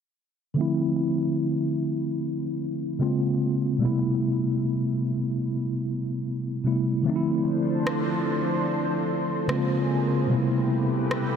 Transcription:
0.54 D3 F3 A3
0.59 C4 E4
2.99 C#3 G#3 A#3 C4 F4
3.78 B2 G3 A3
3.83 C3 B3 E4
6.64 C3 G3 A3 B3 E4
7.03 D3 F3 A3 D4 A4 C5
7.08 C4 D#4
7.16 E4
7.87 cross-stick
9.48 C#3 G#3 A#3 C4 F4 G#4, cross-stick
10.27 B2 C3 G3 A3 G4 B4
10.32 C3 B3 E4
11.11 cross-stick

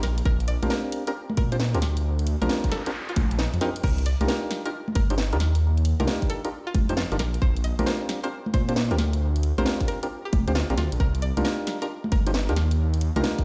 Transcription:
0.03 A#1 A#4, snare, open hi-hat
0.18 closed hi-hat
0.25 A#1 A#4, kick
0.40 closed hi-hat
0.48 D5, open hi-hat
0.62 A#1 C4 D4 F4 G4 A#4, closed hi-hat, high conga
0.70 A#4, snare
0.92 open hi-hat
1.07 C4 D4 F4 G4 A#4, closed hi-hat
1.30 high conga
1.37 A#2 A#4, kick, open hi-hat
1.52 C4 D4 F4 G4 C5, closed hi-hat
1.60 snare
1.74 D2 C4 D4 F4 G4 A#4, closed hi-hat
1.82 snare, open hi-hat
1.97 closed hi-hat
2.04 noise sweep
2.19 closed hi-hat
2.27 open hi-hat
2.42 A#1 C4 D4 F4 G4 A#4, closed hi-hat, high conga
2.49 snare
2.64 kick, open hi-hat
2.72 A4, snare, open hi-hat
2.86 C4 D4 F4 G4 A#4, closed hi-hat
3.09 F4, closed hi-hat
3.16 A#1, kick, open hi-hat, high conga
3.31 closed hi-hat
3.39 D#4, snare
3.53 F2, closed hi-hat
3.61 C4 D4 D#4 F4 G4 A#4, snare, open hi-hat
3.76 closed hi-hat
3.83 C2 A#4, kick, crash
3.98 closed hi-hat
4.06 D5, open hi-hat
4.20 C2 D4 D#4 F4 G4 A#4, closed hi-hat, high conga
4.28 A#4, snare
4.51 snare, open hi-hat
4.65 D4 D#4 F4 G4 A#4, closed hi-hat
4.88 high conga
4.95 G1 A#4, kick, open hi-hat
5.10 D4 D#4 F4 G4 C5, closed hi-hat
5.18 snare
5.32 D#2 D4 D#4 F4 G4 A#4, closed hi-hat
5.40 snare, open hi-hat
5.55 closed hi-hat
5.77 closed hi-hat
5.85 open hi-hat
6.00 C2 D4 D#4 F4 G4 A#4, closed hi-hat, high conga
6.07 snare
6.22 kick, open hi-hat
6.30 A4, open hi-hat
6.45 D4 D#4 F4 G4 A#4, closed hi-hat
6.67 F4
6.75 G1, kick, open hi-hat, high conga
6.89 F2 D4 D#4 F4 G4 C5, closed hi-hat
6.97 F4, snare
7.12 G1 D4 D#4 F4 G4 A#4, closed hi-hat
7.19 A#1 A#4, snare, open hi-hat
7.34 closed hi-hat
7.42 A#1 C5, kick
7.57 closed hi-hat
7.64 D#5, open hi-hat
7.79 A#1 C4 D4 F4 G4 A#4, closed hi-hat, high conga
7.86 C5, snare
8.09 snare, open hi-hat
8.23 C4 D4 F4 G4 A#4 C5, closed hi-hat
8.46 high conga
8.54 A#2 C5, kick, open hi-hat
8.69 C4 D4 F4 G4 C5, closed hi-hat
8.76 snare
8.91 D2 C4 D4 F4 G4 A#4, closed hi-hat
8.98 snare, open hi-hat
9.13 closed hi-hat
9.36 closed hi-hat
9.43 open hi-hat
9.58 A#1 C4 D4 F4 G4 A#4 C5, closed hi-hat, high conga
9.66 snare
9.81 kick, open hi-hat
9.88 A#4, open hi-hat
10.03 C4 D4 F4 G4 A#4, closed hi-hat
10.25 G4
10.33 F1, kick, open hi-hat, high conga
10.48 D2 C4 D4 F4 G4 C5, closed hi-hat
10.55 F4, snare
10.70 A#1 C4 D4 F4 G4 A#4, closed hi-hat
10.78 D2 F4, snare, open hi-hat
10.92 A#1, closed hi-hat
11.00 C2 A#4, kick
11.15 closed hi-hat
11.22 D5, open hi-hat
11.37 C2 D4 D#4 F4 G4 A#4, closed hi-hat, high conga
11.45 A#4, snare
11.67 snare, open hi-hat
11.82 D4 D#4 F4 G4 A#4, closed hi-hat
12.04 high conga
12.12 G1 A#4, kick, open hi-hat
12.27 D4 D#4 F4 G4 C5, closed hi-hat
12.34 snare
12.49 D#2 D4 D#4 F4 G4 A#4, closed hi-hat
12.56 snare, open hi-hat
12.71 closed hi-hat
12.94 closed hi-hat
13.01 open hi-hat
13.16 C2 D4 D#4 F4 G4 A#4, closed hi-hat, high conga
13.24 snare
13.39 kick, open hi-hat

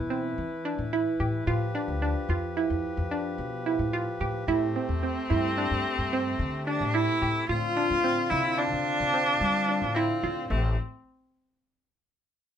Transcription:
Already playing: B2 E3 E4 B4
0.10 C4
0.38 E3
0.65 D4
0.78 A2
0.93 E4
1.20 A2 G4
1.46 A2 F3 F4 G4
1.75 D4
1.88 D2
2.02 D4
2.29 F2 F4
2.57 E4
2.70 F2
2.97 F2
3.11 D4
3.38 B2
3.66 E4
3.79 A2
3.93 F4
4.20 A2 G4
4.47 A2 C3 A3 C4 E4
4.76 C4
4.89 E2
5.03 C4
5.30 G2 E4
5.58 D4
5.71 G2
5.98 G2
6.13 C4
6.39 D3
6.67 D4
6.81 A2
6.94 E4
7.22 A2 G4
7.48 A2 D3 C4 F4
7.77 D4
7.90 A2
8.04 C4
8.30 C3 E4
8.58 D4
8.72 C3
9.00 C3
9.14 C4
9.41 G3
9.69 D4
9.82 A2
9.95 C4 E4
10.23 A2 F4
10.50 A1 C3 A3 C4 G4

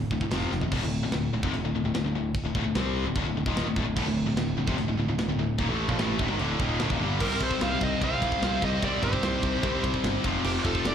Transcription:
0.11 D1 D2 A2, kick
0.21 D2 A2, kick
0.31 F1 F2 C3 F3, snare, open hi-hat
0.52 F1 F2 C3, snare
0.61 F2 C3, floor tom
0.72 D1 D2 A2, kick, crash, china
0.82 D1 D2 A2
1.03 D1 D2 A2
1.12 D1 D2 A2, snare, china
1.33 D1 D2 A2
1.43 F1 F2 C3, kick
1.53 D1 D2 A2, china
1.64 D1 D2 A2
1.74 D1 D2 A2
1.84 D1 D2 A2
1.94 D1 D2 A2, snare, china
2.04 D1 D2 A2
2.13 D1 D2 A2
2.35 kick, china
2.44 D1 D2 A2
2.55 D1 D2 A2, kick
2.64 D1 D2 A2
2.75 C2 C3 G3 C4, snare, china
3.05 D1 D2 A2
3.15 D1 D2 A2, kick, china
3.26 D1 D2 A2
3.36 D1 D2 A2
3.46 D#1 D#2 A#2 D#3, kick
3.57 snare, china
3.66 D1 D2 A2
3.76 D1 D2 A2, kick
3.87 D1 D2 A2
3.96 D1 D2 A2, kick, crash, china
4.06 D1 D2 A2
4.26 D1 D2 A2
4.37 D1 D2 A2, snare, china
4.57 D1 D2 A2
4.68 F1 F2 C3, kick
4.77 D1 D2 A2, china
4.87 D1 D2 A2
4.97 D1 D2 A2
5.07 D1 D2 A2
5.18 D1 D2 A2, snare, china
5.28 D1 D2 A2
5.39 D1 D2 A2
5.58 D#1 D#2 A#2, kick, china
5.69 A1 A2 E3 A3
5.89 A#1 A#2 F3, kick
5.99 A1 A2 E3 A3, snare, china
6.19 D1 D2 A2, kick
6.29 G#1 G#2 D#3
6.39 D1 D2 A2 D3, china
6.59 D#1 D#2 A#2 D#3, kick
6.79 D1 D2 A2, snare, china
6.90 D#1 D#2 A#2, kick
7.00 G1 G2 D3 G3
7.19 C2 C3 G3 C4 D#4 G4 A#4, kick, crash
7.23 C5
7.40 C2 A4 C5, kick, ride
7.51 kick
7.61 C2 C5 F5, snare, ride
7.81 C2 C5 D#5, kick, ride
8.01 C2 C3 G3 C4 D#4 G4 C5 F5, kick, ride
8.22 C2, kick, ride
8.32 kick
8.42 C2, snare, ride
8.62 C2 C5 D#5, kick, ride
8.81 C2 C3 G3 C4 D#4 G4 C5 D5, kick, ride
9.02 G1 G4 C5, kick, ride
9.13 kick
9.23 C2, snare, ride
9.43 C2, kick, ride
9.62 C2 C3 G3 C4 D#4 G4, kick, ride
9.66 C5
9.83 C2, kick, ride
9.94 kick
10.04 G1, snare, ride
10.23 F1 F2 C3 F3 A3 C4 F4, kick, ride
10.44 F1 C4 G4, crash
10.64 F1 F4 A4, kick, ride
10.75 kick
10.85 F1 A4 D5, snare, ride

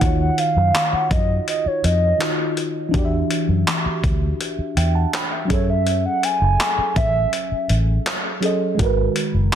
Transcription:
Already playing: D#3 F#5
0.00 D#2 D#4 F4 F#4, kick, closed hi-hat
0.06 C#5
0.21 F#5
0.38 F5, closed hi-hat
0.56 F#2
0.75 clap, closed hi-hat
0.93 F#5, muted fingered electric bass stroke
1.11 F#2 D#5, kick, closed hi-hat
1.48 D#5, closed hi-hat
1.66 C#5, muted fingered electric bass stroke
1.84 F2 D#5, closed hi-hat
2.18 D#3 D#4 F4 F#4, clap, closed hi-hat
2.23 D#5
2.57 closed hi-hat
2.89 E3 D4
2.94 E2 F#4 G4, kick, closed hi-hat
2.98 D5
3.05 E5
3.31 closed hi-hat
3.48 F#2
3.67 clap, closed hi-hat
3.86 muted fingered electric bass stroke
4.04 D2, kick, closed hi-hat
4.41 closed hi-hat
4.58 muted fingered electric bass stroke
4.77 E2 E5 G5, closed hi-hat
4.95 F#5 A5
5.13 G5 B5, clap, closed hi-hat
5.32 E5 G5
5.45 F#3 C#4
5.50 F#2 G#4 A4 C#5, kick, closed hi-hat
5.55 E5
5.70 E5
5.87 closed hi-hat
6.06 F#5
6.23 G#5, closed hi-hat
6.41 F#1
6.60 clap, closed hi-hat
6.78 muted fingered electric bass stroke
6.96 A1 E5, kick, closed hi-hat
7.33 closed hi-hat
7.51 muted fingered electric bass stroke
7.69 A1, closed hi-hat
8.06 clap, closed hi-hat
8.40 F#3 C#4 G#4 A4, closed hi-hat
8.45 D#5
8.75 D#3 G#3
8.79 G#1 F#4 A#4, kick, closed hi-hat
8.85 B4
9.16 closed hi-hat
9.34 F#1

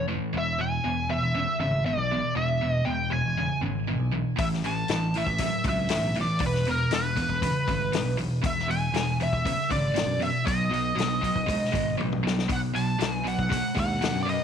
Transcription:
Already playing: F1
0.08 A2 E3
0.33 E1 E2 B2
0.38 E5
0.59 E2 B2 G#5
0.84 E1 E2 B2
1.09 E2 B2 E5
1.23 E1
1.34 E2 C#3
1.60 G#1 E2 C#3 E5
1.86 E2 B2 D5
1.98 B1
2.12 E2 B2
2.35 E1 E2 B2 E5
2.61 E2 B2
2.72 D#5
2.85 E1 E2 B2 G5
3.10 E2 B2 G#5
3.26 E1
3.37 E2 C#3
3.62 G#1 E2 C#3
3.88 E2 B2
4.00 B1
4.12 E2 B2
4.36 A1 A2 E3 E5, kick, open hi-hat
4.53 snare
4.64 A2 E3 A5, open hi-hat
4.88 A1 A2 E3, snare, open hi-hat
5.14 A2 E3 E5, open hi-hat
5.27 A1, kick
5.38 A2 F#3, kick, open hi-hat
5.64 C#2 A2 F#3, kick, open hi-hat
5.69 E5
5.89 A2 E3, snare, open hi-hat
6.03 B1
6.14 A2 E3, open hi-hat
6.21 D5
6.39 E1 E2 B2, kick, open hi-hat
6.46 B4
6.54 snare
6.65 E2 B2, open hi-hat
6.71 A#4
6.91 E1 E2 B2, snare, open hi-hat
6.95 B4
7.16 E2 B2, kick, open hi-hat
7.29 E1, kick
7.42 E2 C#3, kick, open hi-hat
7.68 G#1 E2 C#3, kick, open hi-hat
7.92 E2 B2, snare, open hi-hat
8.05 B1
8.17 E2 B2, open hi-hat
8.42 E1 E2 B2, kick, open hi-hat
8.46 E5
8.59 snare
8.68 E2 B2 G#5, open hi-hat
8.92 E1 E2 B2, snare, open hi-hat
9.20 E2 B2 E5, open hi-hat
9.33 E1, kick
9.45 E2 C#3, kick, open hi-hat
9.70 G#1 E2 C#3 D5, kick, open hi-hat
9.94 E2 B2, snare, open hi-hat
10.06 F#2
10.20 E2 B2 E5, open hi-hat
10.46 B1 B2 F#3 D#5, kick, open hi-hat
10.71 B2 F#3, open hi-hat
10.96 B1 B2 F#3, open hi-hat
11.00 snare
11.21 B2 F#3, kick, open hi-hat
11.36 B1, kick
11.46 B2 G#3, kick, open hi-hat
11.64 snare
11.72 G#1 B2 G#3, kick, open hi-hat
11.97 A1 B2 F#3, high tom
12.12 mid tom
12.23 B1 B2 F#3
12.27 snare
12.39 snare
12.48 B1 B2 F#3, kick, open hi-hat
12.53 F#5
12.74 B2 F#3 A5, open hi-hat
12.98 B1 B2 F#3, snare, open hi-hat
13.14 G#5
13.23 B2 F#3, open hi-hat
13.28 F#5
13.38 B1, kick
13.49 B2 G#3, kick, open hi-hat
13.75 D#2 B2 G#3, kick, open hi-hat
13.79 F#5
14.01 B2 F#3, snare, open hi-hat
14.15 F#2
14.23 B2 F#3 D5
14.29 D#5, open hi-hat

